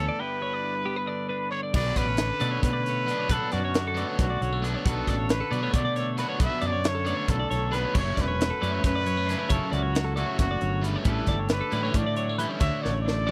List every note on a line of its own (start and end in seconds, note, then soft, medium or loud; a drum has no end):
0.00 0.19 A2 medium
0.00 0.16 E3 medium
0.00 0.20 B3 medium
0.00 0.17 C#4 medium
0.00 0.21 A4 loud
0.09 0.20 D5 medium
0.19 1.72 G2 medium
0.19 1.05 D3 medium
0.19 0.40 B3 medium
0.19 0.61 D4 soft
0.19 1.73 E4 medium
0.19 1.50 B4 loud
0.19 0.42 G5 medium
0.41 0.84 B3 medium
0.41 0.53 C#5 medium
0.53 0.75 D5 medium
0.62 1.29 D4 medium
0.75 0.86 B4 medium
0.86 1.72 B3 medium
0.86 0.96 G4 medium
0.96 1.07 B4 medium
1.06 1.51 D3 medium
1.06 1.29 D5 medium
1.29 1.72 D4 medium
1.29 1.51 B4 medium
1.51 2.19 D3 medium
1.51 1.61 C#5 loud
1.51 1.63 C#5 medium
1.63 1.75 D5 medium
1.74 1.91 B1 medium
1.74 2.03 B2 medium
1.74 2.20 B2 medium
1.74 2.04 F#3 loud
1.74 2.04 B3 medium
1.74 2.04 D4 medium
1.74 3.11 D4 medium
1.74 1.97 B4 loud
1.74 1.98 D5 loud
1.74 kick loud
1.74 crash loud
1.96 2.30 A1 medium
1.96 3.36 C#4 medium
1.96 2.62 B4 loud
1.96 2.08 D5 medium
1.96 kick medium
1.96 closed hi-hat medium
2.08 2.30 C#5 medium
2.17 2.64 D3 medium
2.17 snare loud
2.17 closed hi-hat loud
2.30 2.41 A4 medium
2.40 2.58 B2 loud
2.40 2.70 B2 medium
2.40 2.70 F#3 medium
2.40 2.89 A3 medium
2.40 2.70 B3 medium
2.40 2.70 D4 loud
2.40 2.51 D5 medium
2.40 closed hi-hat medium
2.51 2.73 C#5 medium
2.62 3.13 B2 medium
2.62 3.75 D3 medium
2.62 3.34 B4 loud
2.62 kick loud
2.62 closed hi-hat loud
2.73 2.84 D5 medium
2.84 3.07 C#5 medium
2.84 snare soft
2.84 closed hi-hat medium
2.89 3.36 A3 medium
3.07 3.27 B2 medium
3.07 3.27 F#3 loud
3.07 3.27 B3 loud
3.07 3.28 D4 loud
3.07 3.19 B4 medium
3.07 closed hi-hat medium
3.11 3.33 D4 medium
3.19 3.30 C#5 medium
3.28 3.38 B1 loud
3.28 3.58 B2 loud
3.28 3.58 F#3 medium
3.28 3.58 B3 medium
3.28 3.58 D4 loud
3.28 3.52 B4 loud
3.28 kick loud
3.28 closed hi-hat loud
3.32 3.76 B2 medium
3.32 4.63 D4 medium
3.32 3.54 A4 loud
3.52 4.03 F#2 medium
3.52 4.88 C#4 medium
3.52 4.18 F#4 medium
3.52 3.64 D5 medium
3.52 snare soft
3.52 closed hi-hat medium
3.65 3.86 C#5 medium
3.74 4.18 D3 medium
3.74 snare loud
3.74 closed hi-hat medium
3.87 3.98 A4 medium
3.95 4.25 B2 medium
3.95 4.25 F#3 medium
3.95 4.25 B3 loud
3.95 4.24 D4 medium
3.95 4.09 D5 medium
3.95 closed hi-hat medium
3.99 4.41 A3 medium
4.09 4.30 C#5 medium
4.19 4.36 B1 medium
4.19 5.30 D3 medium
4.19 4.65 F#4 loud
4.19 kick loud
4.19 snare soft
4.19 closed hi-hat medium
4.30 4.41 D5 medium
4.41 4.75 B1 medium
4.41 4.53 F#3 medium
4.41 4.64 C#5 medium
4.41 closed hi-hat medium
4.53 4.85 A3 soft
4.63 4.83 B2 loud
4.63 4.83 F#3 medium
4.63 4.84 B3 loud
4.63 4.86 D4 medium
4.63 4.85 D4 loud
4.63 4.74 B4 medium
4.63 closed hi-hat medium
4.74 4.85 C#5 medium
4.84 5.02 B1 medium
4.84 5.13 B2 medium
4.84 5.30 B2 medium
4.84 5.14 F#3 medium
4.84 5.14 B3 medium
4.84 5.14 D4 loud
4.84 6.19 F#4 medium
4.84 5.31 A4 medium
4.84 5.08 B4 medium
4.84 kick loud
4.84 closed hi-hat medium
5.07 5.41 A1 medium
5.07 6.38 D4 medium
5.07 5.17 D5 medium
5.07 kick medium
5.07 snare soft
5.07 closed hi-hat medium
5.17 5.40 C#5 medium
5.29 5.75 D3 medium
5.29 5.74 B4 loud
5.29 snare loud
5.29 closed hi-hat loud
5.41 5.52 A4 medium
5.51 5.68 B2 loud
5.51 5.81 B2 medium
5.51 5.80 F#3 medium
5.51 5.63 F#3 medium
5.51 5.80 B3 loud
5.51 5.80 D4 medium
5.51 5.62 D5 medium
5.51 closed hi-hat medium
5.63 5.96 A3 soft
5.63 5.84 C#5 medium
5.73 6.24 B2 medium
5.73 6.84 D3 medium
5.73 6.11 D5 medium
5.73 kick loud
5.73 closed hi-hat loud
5.85 5.96 D5 medium
5.96 6.44 A3 medium
5.96 6.18 C#5 medium
5.96 snare soft
5.96 closed hi-hat medium
6.17 6.38 B2 loud
6.17 6.39 F#3 loud
6.17 6.40 B3 loud
6.17 6.40 D4 loud
6.17 6.41 F#4 medium
6.17 6.29 B4 medium
6.17 snare soft
6.17 closed hi-hat medium
6.29 6.41 C#5 medium
6.40 6.49 B1 medium
6.40 6.69 B2 medium
6.40 6.85 B2 medium
6.40 6.69 F#3 loud
6.40 6.69 B3 medium
6.40 6.70 D4 medium
6.40 7.70 D4 medium
6.40 6.61 B4 medium
6.40 kick loud
6.40 closed hi-hat loud
6.44 6.68 E5 loud
6.62 7.12 F#2 medium
6.62 6.72 D5 medium
6.62 closed hi-hat medium
6.66 7.97 C#4 medium
6.66 6.89 D5 loud
6.73 6.95 C#5 medium
6.84 7.28 D3 medium
6.84 7.31 C#5 loud
6.84 snare loud
6.84 closed hi-hat medium
6.95 7.06 A4 medium
7.05 7.35 B2 medium
7.05 7.35 F#3 medium
7.05 7.51 A3 medium
7.05 7.35 B3 medium
7.05 7.35 D4 loud
7.05 7.16 D5 medium
7.05 closed hi-hat medium
7.17 7.39 C#5 medium
7.28 7.45 B1 medium
7.28 7.96 D3 medium
7.28 7.76 A4 loud
7.28 kick loud
7.28 closed hi-hat loud
7.39 7.50 D5 medium
7.51 7.84 B1 loud
7.51 8.61 A3 medium
7.51 7.72 C#5 medium
7.51 snare soft
7.51 closed hi-hat medium
7.71 7.94 B2 medium
7.71 7.93 F#3 loud
7.71 7.95 B3 loud
7.71 7.93 D4 medium
7.71 7.95 D4 loud
7.71 7.84 B4 medium
7.71 7.96 B4 medium
7.71 snare soft
7.71 closed hi-hat medium
7.84 7.93 C#5 medium
7.93 8.12 F#1 medium
7.93 9.47 F#2 medium
7.93 8.24 C#3 medium
7.93 8.24 F#3 medium
7.93 8.24 A3 medium
7.93 8.24 C#4 loud
7.93 8.05 D4 medium
7.93 8.15 C#5 medium
7.93 kick loud
7.93 crash medium
7.98 8.22 C#5 medium
8.05 9.26 E4 medium
8.15 8.51 E1 medium
8.15 9.48 C#4 medium
8.15 8.27 D5 medium
8.15 kick medium
8.15 snare soft
8.15 closed hi-hat medium
8.21 8.85 B4 loud
8.28 8.50 C#5 medium
8.39 8.82 F#3 medium
8.39 snare loud
8.39 closed hi-hat loud
8.50 8.61 A4 medium
8.61 8.79 F#2 loud
8.61 8.91 C#3 medium
8.61 8.91 F#3 medium
8.61 9.05 A3 medium
8.61 8.91 A3 medium
8.61 8.90 C#4 medium
8.61 8.72 D5 medium
8.61 closed hi-hat medium
8.72 8.95 C#5 medium
8.83 9.34 F#2 medium
8.83 9.05 F#3 medium
8.83 9.54 B4 loud
8.83 kick loud
8.83 snare soft
8.83 closed hi-hat loud
8.95 9.06 D5 medium
9.06 9.17 F#3 medium
9.06 9.29 C#5 medium
9.06 closed hi-hat medium
9.17 9.50 A3 soft
9.26 9.48 C#3 loud
9.26 9.49 F#3 medium
9.26 9.49 A3 loud
9.26 9.50 C#4 loud
9.26 9.38 D4 medium
9.26 9.39 B4 medium
9.26 snare soft
9.26 closed hi-hat medium
9.38 9.48 E4 medium
9.38 9.48 C#5 medium
9.48 9.59 F#1 loud
9.48 10.38 F#2 medium
9.48 9.79 C#3 medium
9.48 9.79 F#3 loud
9.48 9.79 A3 medium
9.48 9.79 C#4 medium
9.48 11.09 E4 medium
9.48 9.71 C#5 loud
9.48 kick loud
9.48 closed hi-hat loud
9.52 9.75 A4 medium
9.71 10.22 C#2 medium
9.71 11.02 C#4 medium
9.71 10.16 F#4 medium
9.71 9.83 D5 medium
9.71 closed hi-hat medium
9.83 10.05 C#5 medium
9.93 11.02 F#3 medium
9.93 snare loud
9.93 closed hi-hat loud
10.05 10.16 A4 medium
10.16 10.46 C#3 medium
10.16 10.46 F#3 medium
10.16 11.07 A3 medium
10.16 10.46 A3 medium
10.16 10.46 C#4 loud
10.16 10.37 F#4 medium
10.16 10.26 D5 medium
10.16 closed hi-hat medium
10.26 10.49 C#5 medium
10.39 10.56 F#1 medium
10.39 10.61 E2 medium
10.39 10.86 F#4 loud
10.39 kick loud
10.39 snare soft
10.39 closed hi-hat loud
10.51 10.61 D5 medium
10.61 10.95 G1 loud
10.61 10.83 F#2 medium
10.61 10.84 C#5 medium
10.61 closed hi-hat medium
10.82 11.06 G2 medium
10.82 11.05 C#3 medium
10.82 11.05 F#3 medium
10.82 11.05 A3 medium
10.82 11.05 C#4 loud
10.82 10.96 B4 medium
10.82 closed hi-hat medium
10.96 11.07 C#5 medium
11.05 11.22 A1 medium
11.05 11.50 A2 medium
11.05 11.50 D3 medium
11.05 11.34 E3 medium
11.05 11.34 G3 loud
11.05 11.72 A3 medium
11.05 11.35 C#4 medium
11.05 11.29 D4 medium
11.05 11.34 E4 loud
11.05 11.48 A4 medium
11.05 11.28 B4 medium
11.05 kick loud
11.05 closed hi-hat medium
11.09 12.38 G4 medium
11.27 11.60 G1 medium
11.27 12.61 D4 medium
11.27 11.40 D5 medium
11.27 kick medium
11.27 snare soft
11.27 closed hi-hat medium
11.40 11.61 C#5 medium
11.49 11.94 D3 medium
11.49 11.98 B4 medium
11.49 snare loud
11.49 closed hi-hat medium
11.61 11.72 A4 medium
11.72 11.89 A2 medium
11.72 12.01 E3 medium
11.72 11.84 F#3 medium
11.72 12.02 G3 medium
11.72 12.01 C#4 loud
11.72 12.01 E4 loud
11.72 11.83 D5 medium
11.72 snare soft
11.72 closed hi-hat medium
11.83 12.17 A3 medium
11.83 12.05 C#5 medium
11.94 12.45 A2 medium
11.94 13.04 D3 medium
11.94 12.35 D5 medium
11.94 kick loud
11.94 closed hi-hat medium
12.06 12.16 D5 medium
12.16 12.29 F#3 medium
12.16 12.38 C#5 medium
12.16 closed hi-hat medium
12.29 12.62 A3 medium
12.38 12.59 E3 medium
12.38 12.59 G3 medium
12.38 12.59 C#4 loud
12.38 12.61 E4 loud
12.38 12.59 G4 medium
12.38 12.49 B4 medium
12.38 closed hi-hat medium
12.49 12.59 C#5 medium
12.60 12.69 D2 medium
12.60 13.31 D2 medium
12.60 12.89 D3 medium
12.60 12.89 A3 medium
12.60 12.89 D4 loud
12.60 12.72 D4 medium
12.60 12.90 F#4 medium
12.60 12.83 C#5 medium
12.60 12.84 E5 loud
12.60 kick loud
12.60 closed hi-hat loud
12.72 13.31 E4 medium
12.82 13.31 A1 medium
12.82 13.31 A3 medium
12.82 13.01 C#5 medium
12.82 12.94 D5 medium
12.82 snare medium
12.94 13.16 C#5 medium
13.01 13.31 D5 loud
13.06 13.31 D3 medium
13.06 snare medium
13.16 13.26 A4 medium
13.27 13.31 F#3 medium
13.27 13.31 A3 medium
13.27 13.31 D4 medium
13.27 13.31 F#4 loud
13.27 13.31 D5 medium